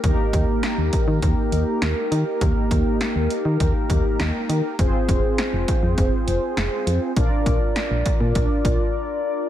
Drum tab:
HH |xxxxxxxx|xxxxxxxx|xxxxxxxx|xxxxxx--|
SD |--o---o-|--o---o-|--o---o-|--o-----|
BD |oo-oo---|oo--oo--|oo-oo---|oo-ooo--|